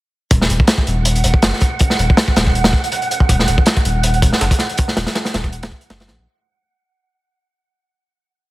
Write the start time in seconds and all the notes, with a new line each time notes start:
0.31 D#1 F#5, kick, closed hi-hat
0.41 snare
0.50 D#1, closed hi-hat
0.60 kick
0.67 snare, closed hi-hat
0.78 kick
0.87 D#1, closed hi-hat
1.05 closed hi-hat
1.15 closed hi-hat
1.24 D#1, closed hi-hat
1.34 kick
1.42 F#1, snare, closed hi-hat
1.53 snare
1.61 kick, closed hi-hat
1.79 kick, closed hi-hat
1.90 snare
1.99 D#1, closed hi-hat
2.10 kick
2.17 snare, closed hi-hat
2.28 kick
2.36 D#1, snare, closed hi-hat
2.47 kick
2.55 closed hi-hat
2.64 snare, closed hi-hat
2.73 kick
2.84 closed hi-hat
2.92 closed hi-hat
3.02 closed hi-hat
3.11 closed hi-hat
3.20 kick
3.29 D#1, kick, closed hi-hat
3.39 snare
3.48 D#1, closed hi-hat
3.58 kick
3.66 snare, closed hi-hat
3.77 kick, closed hi-hat
3.85 D#1, closed hi-hat
4.03 closed hi-hat
4.14 closed hi-hat
4.22 D#1, kick, closed hi-hat
4.33 snare
4.41 F#1, snare, closed hi-hat
4.51 kick, snare, closed hi-hat
4.59 snare, closed hi-hat
4.69 closed hi-hat
4.78 kick, closed hi-hat
4.88 snare
4.97 D#1, snare, closed hi-hat
5.07 snare, closed hi-hat
5.15 snare, closed hi-hat
5.25 snare, closed hi-hat
5.34 D#1, snare, closed hi-hat
5.44 kick, closed hi-hat
5.52 closed hi-hat
5.63 snare, closed hi-hat
5.72 kick, closed hi-hat
5.81 closed hi-hat
5.90 F#1, snare, closed hi-hat
6.00 snare, closed hi-hat
6.08 A#1, snare, closed hi-hat
6.19 A#1